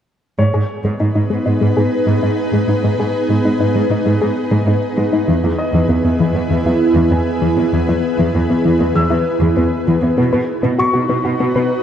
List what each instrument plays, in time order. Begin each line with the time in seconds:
0.38 cello section G#2, synth arpeggio sound G#3, ambient pad B3 D#4 G#4 B4, grand piano C#5
0.54 cello section G#2, synth arpeggio sound G#4
0.85 cello section G#2, synth arpeggio sound G#3
1.00 cello section G#2, synth arpeggio sound D#4
1.16 cello section G#2, synth arpeggio sound D#4
1.30 cello section G#2, synth arpeggio sound G#3
1.46 cello section G#2, synth arpeggio sound D#4
1.61 cello section G#2, synth arpeggio sound G#3
1.76 cello section G#2, synth arpeggio sound G#4
2.07 cello section G#2, synth arpeggio sound G#3
2.22 cello section G#2, synth arpeggio sound D#4
2.53 cello section G#2, synth arpeggio sound G#3
2.68 cello section G#2, synth arpeggio sound D#4
2.83 cello section G#2, synth arpeggio sound G#3
2.99 cello section G#2, synth arpeggio sound G#4
3.29 cello section G#2, synth arpeggio sound G#3
3.45 cello section G#2, synth arpeggio sound D#4
3.60 cello section G#2, synth arpeggio sound D#4
3.75 cello section G#2, synth arpeggio sound G#3
3.90 cello section G#2, synth arpeggio sound D#4
4.06 cello section G#2, synth arpeggio sound G#3
4.21 cello section G#2, synth arpeggio sound G#4
4.51 cello section G#2, synth arpeggio sound G#3
4.66 cello section G#2, synth arpeggio sound D#4
4.97 cello section G#2, synth arpeggio sound G#3
5.12 cello section G#2, synth arpeggio sound D#4
5.27 cello section E2, synth arpeggio sound E3, ambient pad B3 E4 G#4 B4
5.43 cello section E2, synth arpeggio sound E4
5.58 grand piano D#5
5.73 cello section E2, synth arpeggio sound E3
5.89 cello section E2, synth arpeggio sound B3
6.04 cello section E2, synth arpeggio sound B3
6.19 cello section E2, synth arpeggio sound E3
6.34 cello section E2, synth arpeggio sound B3
6.50 cello section E2, synth arpeggio sound E3
6.65 cello section E2, synth arpeggio sound E4
6.96 cello section E2, synth arpeggio sound E3
7.12 cello section E2, synth arpeggio sound B3, grand piano G#5
7.42 cello section E2, synth arpeggio sound E3
7.58 cello section E2, synth arpeggio sound B3
7.72 cello section E2, synth arpeggio sound E3
7.88 cello section E2, synth arpeggio sound E4
8.19 cello section E2, synth arpeggio sound E3
8.34 cello section E2, synth arpeggio sound B3
8.50 cello section E2, synth arpeggio sound B3
8.65 cello section E2, synth arpeggio sound E3
8.80 cello section E2, synth arpeggio sound B3
8.95 cello section E2, synth arpeggio sound E3, grand piano E6
9.10 cello section E2, synth arpeggio sound E4
9.41 cello section E2, synth arpeggio sound E3
9.57 cello section E2, synth arpeggio sound B3
9.87 cello section E2, synth arpeggio sound E3
10.02 cello section E2, synth arpeggio sound B3
10.17 cello section B2, ambient pad B3 D#4 F#4 B4, synth arpeggio sound B3
10.33 cello section B2, synth arpeggio sound B4
10.63 cello section B2, synth arpeggio sound B3
10.79 cello section B2, synth arpeggio sound F#4, grand piano C#6
10.94 cello section B2, synth arpeggio sound F#4
11.09 cello section B2, synth arpeggio sound B3
11.24 cello section B2, synth arpeggio sound F#4
11.40 cello section B2, synth arpeggio sound B3
11.55 cello section B2, synth arpeggio sound B4